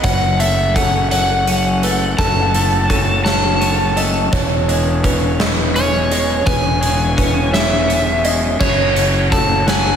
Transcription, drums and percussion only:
0.04 kick medium
0.04 closed hi-hat medium
0.40 closed hi-hat soft
0.76 kick medium
0.76 closed hi-hat soft
1.11 closed hi-hat medium
1.47 closed hi-hat soft
1.83 closed hi-hat soft
2.19 kick medium
2.19 closed hi-hat medium
2.54 closed hi-hat soft
2.90 kick medium
2.90 closed hi-hat soft
3.26 snare medium
3.26 closed hi-hat medium
3.61 closed hi-hat soft
3.97 closed hi-hat soft
4.33 kick medium
4.33 closed hi-hat medium
4.69 closed hi-hat soft
5.04 kick medium
5.04 closed hi-hat soft
5.40 snare medium
5.40 closed hi-hat medium
5.76 closed hi-hat soft
6.11 closed hi-hat medium
6.47 kick medium
6.47 closed hi-hat medium
6.83 closed hi-hat soft
7.18 kick medium
7.18 closed hi-hat soft
7.54 snare medium
7.54 closed hi-hat medium
7.90 closed hi-hat soft
8.25 closed hi-hat soft
8.61 kick medium
8.61 crash medium
8.96 closed hi-hat soft
9.32 kick medium
9.32 closed hi-hat soft
9.68 snare medium
9.68 closed hi-hat medium

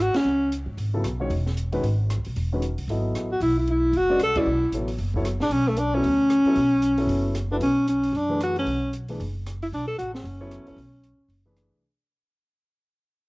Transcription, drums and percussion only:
0.14 snare medium
0.14 ride soft
0.52 closed hi-hat soft
0.78 open hi-hat soft
1.04 cross-stick medium
1.04 closed hi-hat medium
1.30 open hi-hat soft
1.46 snare soft
1.57 closed hi-hat soft
1.73 open hi-hat soft
1.84 open hi-hat soft
2.10 cross-stick medium
2.10 closed hi-hat medium
2.25 open hi-hat soft
2.36 open hi-hat soft
2.62 closed hi-hat soft
2.78 open hi-hat soft
2.89 open hi-hat soft
3.15 cross-stick medium
3.15 closed hi-hat medium
3.41 open hi-hat soft
3.68 closed hi-hat soft
3.93 open hi-hat soft
4.19 cross-stick medium
4.19 closed hi-hat medium
4.36 kick medium
4.36 ride medium
4.72 closed hi-hat soft
4.88 open hi-hat soft
4.98 open hi-hat soft
5.14 kick medium
5.25 cross-stick medium
5.25 closed hi-hat medium
5.40 snare soft
5.51 open hi-hat soft
5.77 closed hi-hat soft
6.04 open hi-hat soft
6.30 cross-stick medium
6.30 closed hi-hat medium
6.45 open hi-hat soft
6.56 open hi-hat soft
6.82 closed hi-hat medium
6.98 open hi-hat soft
7.09 open hi-hat soft
7.35 cross-stick medium
7.35 closed hi-hat medium
7.61 open hi-hat soft
7.88 closed hi-hat soft
8.04 open hi-hat soft
8.15 open hi-hat soft
8.41 cross-stick medium
8.41 closed hi-hat medium
8.56 open hi-hat soft
8.67 open hi-hat soft
8.93 closed hi-hat soft
9.08 open hi-hat soft
9.20 open hi-hat soft
9.46 cross-stick medium
9.46 closed hi-hat medium
9.62 open hi-hat soft
9.73 open hi-hat soft
9.99 closed hi-hat soft
10.15 snare soft
10.25 open hi-hat soft
10.51 cross-stick medium
10.51 closed hi-hat medium
10.67 open hi-hat soft
10.78 open hi-hat soft
11.03 closed hi-hat soft
11.30 open hi-hat soft
11.56 cross-stick medium
11.56 closed hi-hat soft

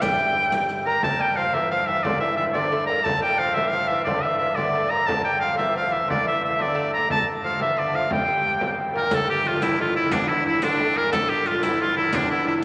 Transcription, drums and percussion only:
0.02 riq medium
0.02 frame drum medium
0.18 riq soft
0.52 riq medium
0.52 frame drum medium
0.69 riq soft
1.03 frame drum medium
1.20 frame drum soft
1.53 frame drum medium
1.71 frame drum soft
2.05 frame drum medium
2.22 frame drum soft
2.55 frame drum medium
2.72 frame drum soft
3.06 frame drum medium
3.24 frame drum soft
3.57 frame drum medium
3.74 frame drum soft
4.07 frame drum medium
4.41 frame drum soft
4.58 frame drum medium
4.75 frame drum soft
4.92 frame drum soft
5.08 frame drum medium
5.26 frame drum soft
5.59 frame drum medium
5.77 frame drum soft
6.10 frame drum medium
6.27 frame drum soft
6.60 frame drum medium
6.77 frame drum soft
7.10 frame drum medium
7.26 frame drum soft
7.60 frame drum medium
7.77 frame drum soft
8.11 frame drum medium
8.27 frame drum soft
8.61 frame drum medium
8.78 frame drum soft
9.11 riq medium
9.11 frame drum medium
9.28 frame drum soft
9.45 riq soft
9.62 riq soft
9.62 frame drum medium
9.80 frame drum soft
10.11 riq medium
10.11 frame drum loud
10.29 frame drum soft
10.62 riq medium
10.62 frame drum medium
10.80 frame drum soft
11.13 riq medium
11.13 frame drum medium
11.30 frame drum soft
11.46 riq soft
11.63 riq soft
11.63 frame drum medium
11.80 frame drum soft
12.13 riq medium
12.13 frame drum medium
12.48 frame drum soft

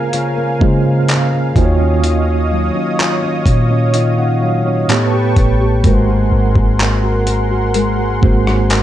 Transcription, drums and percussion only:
0.13 closed hi-hat medium
0.61 kick loud
1.08 clap loud
1.08 closed hi-hat medium
1.56 kick loud
1.56 closed hi-hat medium
2.04 closed hi-hat medium
3.00 clap loud
3.46 kick medium
3.46 closed hi-hat medium
3.94 closed hi-hat medium
4.89 clap loud
4.89 closed hi-hat medium
5.36 kick medium
5.36 closed hi-hat medium
5.84 kick loud
5.84 closed hi-hat medium
6.56 kick medium
6.80 clap loud
7.27 closed hi-hat medium
7.74 closed hi-hat medium
8.23 kick loud
8.47 cross-stick loud
8.70 clap loud
8.70 closed hi-hat medium

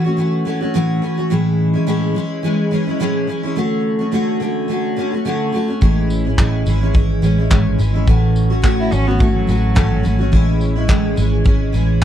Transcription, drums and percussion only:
5.82 kick medium
6.10 tambourine medium
6.38 kick loud
6.38 clap loud
6.67 tambourine medium
6.95 kick loud
7.23 tambourine soft
7.51 kick loud
7.51 clap loud
7.79 tambourine medium
8.08 kick loud
8.36 tambourine medium
8.64 kick loud
8.64 clap loud
8.92 tambourine medium
9.20 kick loud
9.49 tambourine soft
9.77 kick loud
9.77 clap loud
10.05 tambourine medium
10.33 kick loud
10.61 tambourine medium
10.89 kick loud
10.89 clap loud
11.17 tambourine medium
11.46 kick loud
11.74 tambourine soft

